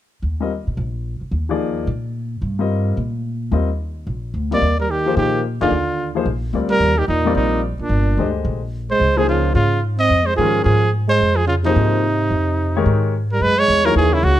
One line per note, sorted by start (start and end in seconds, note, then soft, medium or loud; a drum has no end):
0.22 0.64 D#2 medium
0.40 0.50 G3 soft
0.40 0.50 C4 soft
0.40 0.50 F4 soft
0.40 0.50 A#4 soft
0.40 0.50 D#5 medium
0.67 0.77 A#2 soft
0.77 1.19 A#1 medium
1.21 muted upright bass stroke soft
1.31 1.84 D#2 medium
1.49 1.85 F3 medium
1.49 1.85 A#3 medium
1.49 1.86 D#4 medium
1.49 1.86 G#4 medium
1.49 1.86 D5 medium
1.87 2.39 A#2 medium
2.42 2.94 G2 medium
2.59 2.95 G3 medium
2.59 2.95 C4 soft
2.59 2.95 F4 soft
2.59 2.96 A#4 soft
2.59 2.96 D#5 medium
2.97 3.49 A#2 medium
3.51 4.04 D#2 medium
3.51 3.67 G3 soft
3.51 3.67 C4 soft
3.51 3.67 F4 soft
3.51 3.68 A#4 soft
3.51 3.68 D#5 medium
4.07 4.32 A#1 medium
4.34 4.60 D2 medium
4.51 4.61 G3 soft
4.51 4.78 A#3 medium
4.51 4.61 C4 soft
4.51 4.61 F4 soft
4.51 4.61 A#4 soft
4.51 4.78 D5 medium
4.51 4.62 D#5 medium
4.61 5.14 D#2 medium
4.80 4.91 G3 medium
4.80 4.93 A#4 medium
4.90 5.16 D#3 medium
4.90 5.17 G4 medium
5.06 5.42 F3 medium
5.06 5.42 A#3 medium
5.06 5.42 D#4 medium
5.06 5.43 G#4 medium
5.06 5.43 C5 medium
5.16 5.58 A#2 medium
5.16 5.42 D#3 medium
5.16 5.42 G4 medium
5.61 5.70 F2 medium
5.61 6.12 D3 medium
5.61 5.70 A#3 medium
5.61 5.70 D#4 medium
5.61 6.12 F4 medium
5.61 5.71 G#4 medium
5.61 5.71 D5 medium
5.61 5.71 F5 medium
5.71 6.23 D#2 medium
6.15 6.25 F3 medium
6.15 6.25 A#3 medium
6.15 6.25 D#4 medium
6.15 6.26 G#4 medium
6.15 6.26 C5 medium
6.26 6.51 A#1 medium
6.53 6.79 D2 medium
6.53 6.94 G3 soft
6.53 6.94 C4 soft
6.53 6.95 F4 soft
6.53 6.95 A#4 soft
6.53 6.95 D5 medium
6.70 6.98 G3 medium
6.70 7.00 A#4 medium
6.80 7.06 D#2 medium
6.96 7.07 D#3 medium
6.96 7.08 G4 medium
7.07 7.34 E2 medium
7.07 7.33 A#2 medium
7.07 7.34 D#4 medium
7.25 7.61 G3 medium
7.25 7.61 C4 medium
7.25 7.62 F4 medium
7.25 7.62 A#4 medium
7.25 7.62 D5 medium
7.35 7.76 A#1 medium
7.35 7.61 A#2 medium
7.35 7.62 D#4 medium
7.79 8.31 A#2 medium
7.79 8.32 D4 medium
7.79 muted upright bass stroke soft
7.89 8.15 G1 medium
8.17 8.43 D2 medium
8.17 8.59 D3 soft
8.17 8.59 G#3 soft
8.17 8.59 G4 soft
8.17 8.60 C5 soft
8.17 8.60 D#5 medium
8.45 8.97 A#1 medium
8.90 9.18 G#3 medium
8.90 9.19 C5 medium
9.00 9.52 C#2 medium
9.17 9.26 F3 medium
9.17 9.53 F3 medium
9.17 9.54 A#3 medium
9.17 9.54 D#4 medium
9.17 9.28 G#4 medium
9.17 9.54 G#4 soft
9.17 9.54 C5 medium
9.27 9.53 C#3 medium
9.27 9.54 F4 medium
9.54 10.07 G#2 medium
9.54 9.80 C#3 medium
9.54 9.81 F4 medium
9.98 10.27 C4 medium
9.98 10.28 D#5 medium
10.10 10.36 F2 medium
10.26 10.35 G#3 medium
10.26 10.36 C5 medium
10.36 10.64 G#2 medium
10.36 10.79 D#3 medium
10.36 10.62 F3 medium
10.36 10.79 G#3 medium
10.36 10.80 C#4 medium
10.36 10.80 G4 medium
10.36 10.63 G#4 medium
10.36 10.80 A#4 medium
10.63 11.18 G#2 medium
10.63 10.90 F3 medium
10.63 10.90 G#4 medium
11.08 11.37 G#3 medium
11.08 11.38 C5 medium
11.20 11.73 F2 medium
11.36 11.46 F3 medium
11.36 11.47 G#4 medium
11.47 11.55 C#3 medium
11.47 11.55 F4 medium
11.64 13.09 C3 medium
11.64 12.01 F3 medium
11.64 12.01 A#3 medium
11.64 13.10 D#4 medium
11.64 12.02 D#4 medium
11.64 12.02 G#4 medium
11.64 12.02 C5 medium
11.76 12.28 G#2 medium
12.30 12.83 F2 medium
12.76 13.12 D#3 medium
12.76 13.12 G#3 medium
12.76 13.12 G4 medium
12.76 13.13 A#4 medium
12.76 13.12 C#5 medium
12.86 13.38 G#2 medium
13.31 13.43 G3 medium
13.31 13.44 A#4 medium
13.40 13.67 F#2 medium
13.40 13.57 G#3 medium
13.40 13.61 B4 loud
13.57 13.87 G#3 medium
13.57 13.87 C#5 loud
13.68 13.95 E2 medium
13.85 14.21 E3 medium
13.85 13.95 F#3 medium
13.85 14.21 A#3 medium
13.85 14.22 D#4 medium
13.85 14.22 G#4 medium
13.85 13.96 A#4 medium
13.85 14.22 C#5 medium
13.95 14.22 D#2 medium
13.95 14.14 E3 medium
13.95 14.15 G#4 medium
14.13 14.23 C#3 medium
14.13 14.26 E4 medium
14.23 14.40 C#2 medium
14.23 14.40 C#3 medium
14.23 14.40 F#4 medium